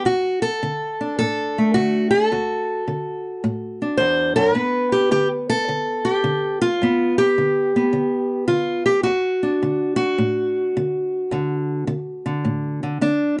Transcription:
0.05 D2 F#4
0.42 A4
0.63 D3
1.01 D4
1.19 A2 A4
1.58 A3
1.74 D3 F#4
2.11 A4
2.32 D2 F#4
2.88 D3
3.44 A2
3.82 D4
3.97 E2 C5
4.36 F#2 A#4
4.54 G2 B3 B4
4.92 G4
5.11 D3 G4
5.50 A4
5.68 D3
6.05 G4
6.24 D3
6.62 F4
6.82 G2 B3
7.18 G4
7.38 D3
7.76 B3
7.93 D3
8.48 D3 F4
8.86 G4
9.03 D2 F#4
9.43 D4
9.63 D3
9.96 F#4
10.18 A2
10.77 D3
11.31 D2 D3
11.87 D3
12.26 D3
12.45 A2
12.83 D3
13.01 D3 D4

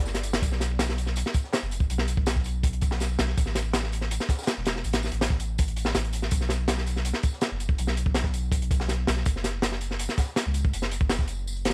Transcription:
Already playing: G1 E4 G4 A4 D5
0.05 snare, tambourine
0.14 snare, closed hi-hat
0.23 closed hi-hat, tambourine
0.33 snare, closed hi-hat
0.42 B1, kick, closed hi-hat, tambourine
0.52 snare
0.60 snare, closed hi-hat, tambourine
0.79 snare, closed hi-hat, tambourine
0.89 snare
0.98 closed hi-hat, tambourine
1.06 snare
1.16 closed hi-hat, tambourine
1.25 snare, closed hi-hat
1.34 kick, closed hi-hat, tambourine
1.44 snare
1.53 snare, closed hi-hat, tambourine
1.62 F#1
1.71 closed hi-hat, tambourine
1.80 kick
1.90 B1, closed hi-hat, tambourine
1.98 snare, closed hi-hat
2.08 closed hi-hat, tambourine
2.17 B1, kick
2.26 snare, closed hi-hat, tambourine
2.36 kick, snare
2.44 closed hi-hat, tambourine
2.63 kick, closed hi-hat, tambourine
2.73 closed hi-hat
2.81 kick, closed hi-hat, tambourine
2.91 snare
3.00 snare, closed hi-hat, tambourine
3.19 B1, snare, closed hi-hat, tambourine
3.27 snare
3.37 A1, kick, closed hi-hat, tambourine
3.46 snare
3.55 snare, closed hi-hat, tambourine
3.73 snare, closed hi-hat, tambourine
3.83 snare
3.92 closed hi-hat, tambourine
4.01 snare
4.11 closed hi-hat, tambourine
4.20 snare, closed hi-hat
4.29 kick, snare, closed hi-hat, tambourine
4.39 snare, tambourine
4.42 snare, tambourine
4.47 snare, closed hi-hat, tambourine
4.57 E1
4.65 snare, closed hi-hat, tambourine
4.76 snare
4.84 A1, closed hi-hat, tambourine
4.93 snare, closed hi-hat
5.03 snare, tambourine
5.12 A1, closed hi-hat
5.21 snare, closed hi-hat, tambourine
5.30 kick, snare
5.40 closed hi-hat, tambourine
5.58 kick, closed hi-hat, tambourine
5.68 closed hi-hat
5.76 closed hi-hat, tambourine
5.85 snare
5.94 A1, snare, closed hi-hat, tambourine
6.04 closed hi-hat
6.13 closed hi-hat, tambourine
6.22 snare
6.31 B1, kick, closed hi-hat, tambourine
6.41 snare
6.49 snare, closed hi-hat, tambourine
6.68 snare, closed hi-hat, tambourine
6.77 snare
6.87 closed hi-hat, tambourine
6.96 snare
7.05 closed hi-hat, tambourine
7.13 snare, closed hi-hat
7.23 kick, closed hi-hat, tambourine
7.33 snare
7.41 snare, closed hi-hat, tambourine
7.51 F#1
7.60 closed hi-hat, tambourine
7.69 kick
7.78 B1, closed hi-hat, tambourine
7.87 snare, closed hi-hat
7.97 closed hi-hat, tambourine
8.06 B1, kick
8.14 snare, closed hi-hat, tambourine
8.24 kick, snare
8.34 closed hi-hat, tambourine
8.52 kick, closed hi-hat, tambourine
8.62 closed hi-hat
8.71 kick, closed hi-hat, tambourine
8.80 snare
8.88 snare, closed hi-hat, tambourine
9.07 B1, snare, closed hi-hat, tambourine
9.17 snare
9.25 F#1, kick, closed hi-hat, tambourine
9.36 snare
9.44 snare, closed hi-hat, tambourine
9.62 snare, closed hi-hat, tambourine
9.72 snare
9.81 closed hi-hat, tambourine
9.91 snare
9.99 closed hi-hat, tambourine
10.09 snare, closed hi-hat
10.18 kick, snare, closed hi-hat, tambourine
10.28 snare
10.36 snare, closed hi-hat, tambourine
10.46 C#2
10.54 closed hi-hat, tambourine
10.65 kick
10.73 F#1, closed hi-hat, tambourine
10.82 snare, closed hi-hat
10.91 closed hi-hat, tambourine
11.01 F#1, kick
11.09 snare, closed hi-hat, tambourine
11.19 kick, snare
11.28 closed hi-hat, tambourine
11.47 tambourine
11.56 closed hi-hat
11.65 snare, closed hi-hat, tambourine
11.70 snare

